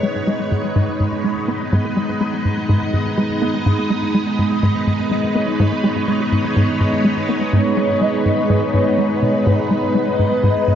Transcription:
Already playing: string machine G#3 B3 D#4 B4 C#5
0.03 analog synth bass G#3
0.27 analog synth bass G#3
0.51 analog synth bass G#2
0.76 analog synth bass G#2
1.00 analog synth bass G#2
1.24 analog synth bass G#3
1.37 string machine D#5
1.48 analog synth bass B3
1.72 analog synth bass G#2
1.97 analog synth bass G#3
2.21 analog synth bass G#3
2.45 analog synth bass G#2
2.69 analog synth bass G#2
2.93 analog synth bass G#2
3.17 analog synth bass G#3
3.42 analog synth bass B3
3.66 analog synth bass G#2
3.90 analog synth bass G#3
4.14 analog synth bass G#3
4.38 analog synth bass G#2
4.63 analog synth bass G#2
4.87 analog synth bass G#2
5.11 analog synth bass G#3
5.25 string machine C#5
5.35 analog synth bass B3
5.59 analog synth bass G#2
5.84 analog synth bass G#3
6.08 analog synth bass G#3
6.32 analog synth bass G#2
6.56 analog synth bass G#2
6.80 analog synth bass G#2
7.04 analog synth bass G#3
7.29 analog synth bass B3
7.53 analog synth bass G#2, soft synth lead C#5
7.77 analog synth bass G#3
8.01 analog synth bass G#3, soft synth lead D#5
8.25 analog synth bass G#2
8.49 analog synth bass G#2, soft synth lead C#5
8.74 analog synth bass G#2
8.98 analog synth bass G#3
9.11 string machine D#5
9.22 analog synth bass B2
9.46 analog synth bass G#2, soft synth lead B4
9.71 analog synth bass G#3
9.95 analog synth bass G#3
10.19 analog synth bass G#2
10.43 analog synth bass G#2
10.68 analog synth bass G#2

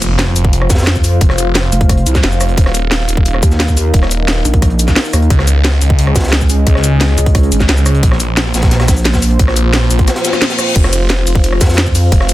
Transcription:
Already playing: detuned saw bass F1, analog synth pad F4 C5 F5, impact
0.01 closed hi-hat, shaker
0.19 snare, closed hi-hat
0.28 snare
0.36 detuned saw bass F1, closed hi-hat, shaker
0.45 kick
0.53 detuned saw bass F1, closed hi-hat
0.62 cross-stick
0.69 wobble bass F2, kick, snare, closed hi-hat, shaker
0.75 snare, closed hi-hat
0.78 snare, closed hi-hat, shaker
0.83 snare, closed hi-hat
0.87 snare, closed hi-hat
0.96 kick, shaker
1.04 closed hi-hat, open hi-hat, shaker
1.21 detuned saw bass F1, kick, closed hi-hat
1.30 cross-stick, snare
1.38 closed hi-hat, shaker
1.55 snare, closed hi-hat
1.64 snare
1.72 wobble bass F1, closed hi-hat, shaker
1.81 kick, closed hi-hat
1.89 kick, cross-stick, closed hi-hat
1.97 closed hi-hat
2.06 wobble bass C2, closed hi-hat, shaker
2.15 kick, snare, shaker
2.23 detuned saw bass F1, snare, closed hi-hat
2.32 shaker
2.41 cross-stick, closed hi-hat, open hi-hat, shaker
2.48 closed hi-hat
2.57 detuned saw bass D#1, analog synth pad D#4 A#4, kick, closed hi-hat
2.66 cross-stick, snare
2.75 closed hi-hat, shaker
2.91 snare, closed hi-hat
3.01 snare
3.08 detuned saw bass D#1, closed hi-hat, shaker
3.17 kick
3.25 detuned saw bass D#1, closed hi-hat
3.34 cross-stick
3.43 wobble bass D#2, kick, closed hi-hat, shaker
3.51 snare, shaker
3.60 snare, closed hi-hat
3.68 kick, shaker
3.77 closed hi-hat, open hi-hat, shaker
3.94 detuned saw bass D#1, kick, closed hi-hat
4.02 cross-stick, snare
4.11 closed hi-hat, shaker
4.28 snare, closed hi-hat
4.37 snare
4.45 wobble bass A#1, closed hi-hat, shaker
4.54 kick, closed hi-hat
4.62 kick, cross-stick, closed hi-hat
4.70 closed hi-hat
4.79 closed hi-hat, shaker
4.88 kick, snare, shaker
4.96 snare, closed hi-hat, open hi-hat
5.05 shaker
5.13 wobble bass D#2, cross-stick, closed hi-hat, open hi-hat, shaker
5.22 closed hi-hat
5.30 detuned saw bass C#2, analog synth pad C#4 G#4 D#5, kick, closed hi-hat
5.39 cross-stick, snare
5.47 closed hi-hat, shaker
5.64 snare, closed hi-hat
5.73 snare
5.82 detuned saw bass C#2, closed hi-hat, shaker
5.90 kick
5.99 detuned saw bass C#2, closed hi-hat
6.07 cross-stick
6.15 wobble bass C#2, kick, snare, closed hi-hat, shaker
6.19 snare, closed hi-hat
6.24 snare, closed hi-hat, shaker
6.28 snare, closed hi-hat
6.33 snare, closed hi-hat
6.41 kick, shaker
6.49 closed hi-hat, open hi-hat, shaker
6.67 detuned saw bass C#2, kick, closed hi-hat
6.75 cross-stick, snare
6.84 closed hi-hat, shaker
7.01 snare, closed hi-hat
7.09 snare
7.18 wobble bass C#2, closed hi-hat, shaker
7.26 kick, closed hi-hat
7.35 kick, cross-stick, closed hi-hat
7.43 closed hi-hat
7.52 wobble bass G#1, closed hi-hat, shaker
7.60 kick, snare, shaker
7.68 detuned saw bass C#2, snare, closed hi-hat
7.77 shaker
7.86 cross-stick, closed hi-hat, open hi-hat, shaker
7.95 closed hi-hat
8.03 detuned saw bass A#1, analog synth pad A#3 F4 C5, kick, closed hi-hat
8.12 cross-stick, snare
8.20 closed hi-hat, shaker
8.37 snare, closed hi-hat
8.46 snare
8.54 detuned saw bass A#1, snare, closed hi-hat, shaker
8.62 kick, snare, closed hi-hat
8.71 detuned saw bass A#1, snare, closed hi-hat
8.80 cross-stick, snare, closed hi-hat
8.88 wobble bass A#1, kick, snare, closed hi-hat, open hi-hat, shaker
8.97 shaker
9.05 snare, closed hi-hat
9.14 kick, snare, open hi-hat, shaker
9.22 open hi-hat, shaker
9.31 closed hi-hat
9.39 detuned saw bass A#1, kick, closed hi-hat
9.48 cross-stick, snare
9.56 closed hi-hat, shaker
9.73 snare, closed hi-hat
9.83 snare
9.91 detuned saw bass A#1, closed hi-hat, shaker
9.99 kick, closed hi-hat
10.08 cross-stick, snare, closed hi-hat, reverse cymbal, shaker
10.16 snare, closed hi-hat
10.25 snare, closed hi-hat, shaker
10.33 cross-stick, snare, shaker
10.41 snare, closed hi-hat
10.50 snare, closed hi-hat, shaker
10.59 cross-stick, snare, open hi-hat, shaker
10.69 closed hi-hat
10.76 detuned saw bass F1, analog synth pad F5, kick, closed hi-hat, crash
10.84 cross-stick, snare
10.93 closed hi-hat, ride, shaker
11.09 snare, closed hi-hat
11.18 snare
11.27 detuned saw bass F1, closed hi-hat, ride, shaker
11.35 kick
11.44 detuned saw bass F1, closed hi-hat
11.52 cross-stick
11.61 wobble bass F2, kick, snare, closed hi-hat, ride, shaker
11.65 snare, closed hi-hat
11.69 snare, closed hi-hat, shaker
11.74 snare, closed hi-hat
11.78 snare, closed hi-hat
11.86 kick, shaker
11.95 closed hi-hat, open hi-hat, ride, shaker
12.12 detuned saw bass F1, kick, closed hi-hat
12.21 cross-stick, snare
12.28 closed hi-hat, ride, shaker

